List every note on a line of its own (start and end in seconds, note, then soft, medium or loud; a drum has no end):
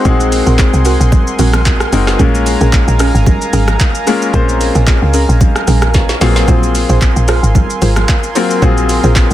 0.00 0.05 G#3 medium
0.00 0.06 C4 medium
0.00 0.06 D#4 medium
0.00 0.06 F#4 medium
0.00 2.15 A#4 medium
0.00 2.21 C5 loud
0.00 2.15 F#5 medium
0.00 9.34 G#5 medium
0.00 2.15 C6 medium
0.05 0.42 A#1 loud
0.05 0.91 G#3 medium
0.05 0.14 C4 loud
0.05 0.92 C4 medium
0.05 0.92 D#4 medium
0.05 0.14 F#4 medium
0.05 0.92 F#4 medium
0.05 0.92 G#4 loud
0.05 0.14 A#4 loud
0.05 kick loud
0.05 low conga medium
0.05 shaker medium
0.20 shaker medium
0.32 open hi-hat medium
0.32 high bongo soft
0.32 shaker medium
0.46 0.70 A#1 medium
0.46 0.54 C4 medium
0.46 0.54 F#4 medium
0.46 0.54 A#4 medium
0.46 shaker medium
0.59 kick loud
0.59 snare medium
0.59 clap medium
0.59 high bongo medium
0.59 shaker medium
0.73 0.97 C2 medium
0.73 shaker medium
0.85 0.94 C4 medium
0.85 0.94 F#4 medium
0.85 0.95 A#4 medium
0.85 open hi-hat medium
0.85 shaker medium
1.00 1.24 A#1 medium
1.00 shaker medium
1.12 kick loud
1.12 low bongo medium
1.12 low conga medium
1.12 shaker medium
1.27 shaker medium
1.39 1.87 A#1 loud
1.39 1.48 C4 medium
1.39 1.48 F#4 medium
1.39 1.48 A#4 medium
1.39 open hi-hat medium
1.39 low conga medium
1.39 shaker medium
1.53 cross-stick loud
1.53 low bongo medium
1.53 shaker medium
1.65 kick medium
1.65 clap loud
1.65 high bongo medium
1.65 shaker medium
1.80 cross-stick loud
1.80 shaker medium
1.92 2.16 F#1 medium
1.92 2.15 G#3 medium
1.92 2.17 C4 medium
1.92 2.15 C4 medium
1.92 2.15 D#4 medium
1.92 2.18 F#4 medium
1.92 2.15 F#4 medium
1.92 2.18 A#4 medium
1.92 2.15 A#4 loud
1.92 open hi-hat medium
1.92 shaker loud
2.07 cross-stick medium
2.07 snare medium
2.07 shaker medium
2.19 2.56 A#1 loud
2.19 3.06 G#3 medium
2.19 3.06 A#3 medium
2.19 2.28 C#4 loud
2.19 3.06 C#4 medium
2.19 3.06 F4 medium
2.19 2.28 G#4 medium
2.19 9.34 A#4 medium
2.19 2.29 A#4 loud
2.19 3.06 A#4 loud
2.19 9.34 F5 medium
2.19 6.17 A#5 medium
2.19 kick loud
2.19 low conga medium
2.19 shaker medium
2.35 shaker medium
2.46 open hi-hat medium
2.46 high bongo soft
2.46 shaker loud
2.61 2.85 A#1 medium
2.61 2.68 C#4 medium
2.61 2.68 G#4 medium
2.61 2.68 A#4 medium
2.61 shaker medium
2.73 kick loud
2.73 clap loud
2.73 high bongo medium
2.73 shaker medium
2.88 3.12 A#1 loud
2.88 shaker medium
2.99 3.09 C#4 medium
2.99 3.09 G#4 medium
2.99 3.09 A#4 medium
2.99 cross-stick loud
2.99 open hi-hat medium
2.99 shaker medium
3.15 3.38 G#1 medium
3.15 shaker medium
3.26 kick loud
3.26 low bongo medium
3.26 low conga medium
3.26 shaker medium
3.42 shaker medium
3.53 3.77 G#1 loud
3.53 3.62 C#4 medium
3.53 3.62 G#4 medium
3.53 3.62 A#4 medium
3.53 open hi-hat medium
3.53 low conga medium
3.53 shaker medium
3.68 cross-stick loud
3.68 low bongo medium
3.68 shaker medium
3.80 kick medium
3.80 clap loud
3.80 high bongo medium
3.80 shaker medium
3.95 shaker medium
4.07 4.29 G#3 medium
4.07 4.29 A#3 medium
4.07 4.32 C#4 medium
4.07 4.29 C#4 medium
4.07 4.29 F4 medium
4.07 4.32 G#4 medium
4.07 4.32 A#4 medium
4.07 4.30 A#4 loud
4.07 open hi-hat medium
4.07 shaker loud
4.22 shaker medium
4.33 4.71 A#1 loud
4.33 5.20 G#3 medium
4.33 5.20 A#3 medium
4.33 4.41 C4 medium
4.33 4.43 C#4 loud
4.33 5.20 F4 medium
4.33 4.43 G#4 medium
4.33 4.43 A#4 loud
4.33 5.21 C5 loud
4.33 kick loud
4.33 low conga medium
4.33 shaker medium
4.41 5.24 C#4 medium
4.49 shaker medium
4.61 open hi-hat medium
4.61 high bongo soft
4.61 shaker loud
4.75 4.99 A#1 loud
4.75 4.82 C#4 medium
4.75 4.83 G#4 medium
4.75 4.83 A#4 medium
4.75 shaker medium
4.87 kick loud
4.87 snare medium
4.87 clap loud
4.87 high bongo medium
4.87 shaker medium
5.02 5.26 C#2 medium
5.14 5.23 C#4 medium
5.14 5.23 G#4 medium
5.14 5.23 A#4 medium
5.14 open hi-hat medium
5.14 shaker medium
5.29 5.53 A#1 medium
5.29 shaker medium
5.41 kick loud
5.41 low bongo medium
5.41 low conga medium
5.41 shaker medium
5.56 cross-stick loud
5.56 shaker medium
5.67 6.15 A#1 medium
5.67 5.76 C#4 medium
5.67 5.77 G#4 medium
5.67 5.77 A#4 medium
5.67 open hi-hat medium
5.67 low conga medium
5.67 shaker medium
5.82 cross-stick loud
5.82 low bongo medium
5.82 shaker medium
5.94 kick medium
5.94 snare medium
5.94 high bongo medium
5.94 shaker medium
6.09 snare medium
6.09 shaker medium
6.21 6.45 A#1 loud
6.21 7.08 F#3 medium
6.21 7.08 A#3 medium
6.21 7.08 C4 medium
6.21 6.46 F4 medium
6.21 7.08 F4 medium
6.21 6.46 G#4 medium
6.21 7.08 G#4 loud
6.21 6.46 A#4 medium
6.21 6.46 C5 medium
6.21 9.34 C6 medium
6.21 snare loud
6.21 open hi-hat medium
6.21 shaker loud
6.36 snare loud
6.36 shaker medium
6.48 6.85 A#1 loud
6.48 6.57 F4 loud
6.48 6.57 G#4 medium
6.48 6.57 A#4 medium
6.48 6.57 C5 loud
6.48 kick loud
6.48 low conga medium
6.48 shaker medium
6.63 shaker medium
6.75 open hi-hat medium
6.75 high bongo soft
6.75 shaker loud
6.89 7.13 A#1 medium
6.89 6.97 F4 medium
6.89 6.97 G#4 medium
6.89 6.97 A#4 medium
6.89 6.97 C5 medium
6.89 shaker medium
7.01 kick medium
7.01 clap loud
7.01 high bongo medium
7.01 shaker medium
7.16 7.40 A#1 medium
7.16 shaker medium
7.28 7.37 F4 medium
7.28 7.37 G#4 medium
7.28 7.37 A#4 medium
7.28 7.37 C5 medium
7.28 cross-stick loud
7.28 open hi-hat medium
7.28 shaker medium
7.43 7.67 G#1 medium
7.43 shaker medium
7.55 kick loud
7.55 low bongo medium
7.55 low conga medium
7.55 shaker medium
7.70 shaker medium
7.82 8.06 G#1 loud
7.82 7.91 F4 medium
7.82 7.91 G#4 medium
7.82 7.91 A#4 medium
7.82 7.91 C5 medium
7.82 open hi-hat medium
7.82 low conga medium
7.82 shaker medium
7.96 cross-stick loud
7.96 low bongo medium
7.96 shaker medium
8.08 kick medium
8.08 clap loud
8.08 high bongo medium
8.08 shaker medium
8.23 shaker medium
8.35 8.58 F#3 medium
8.35 8.58 A#3 medium
8.35 8.58 C4 medium
8.35 8.60 F4 medium
8.35 8.58 F4 medium
8.35 8.60 G#4 medium
8.35 8.60 A#4 medium
8.35 8.58 A#4 loud
8.35 8.61 C5 medium
8.35 open hi-hat medium
8.35 shaker loud
8.51 shaker medium
8.62 8.99 A#1 loud
8.62 9.34 F#3 medium
8.62 9.34 A#3 medium
8.62 9.34 C4 medium
8.62 8.71 F4 loud
8.62 9.34 F4 medium
8.62 8.71 G#4 medium
8.62 9.34 G#4 loud
8.62 8.71 A#4 medium
8.62 8.71 C5 loud
8.62 kick loud
8.62 low conga medium
8.62 shaker medium
8.78 shaker medium
8.89 open hi-hat medium
8.89 high bongo soft
8.89 shaker loud
9.03 9.28 A#1 loud
9.03 9.11 F4 medium
9.03 9.11 G#4 medium
9.03 9.11 A#4 medium
9.03 9.11 C5 medium
9.03 shaker medium
9.16 kick medium
9.16 snare medium
9.16 clap loud
9.16 high bongo medium
9.16 shaker medium
9.31 9.34 C#2 loud
9.31 shaker medium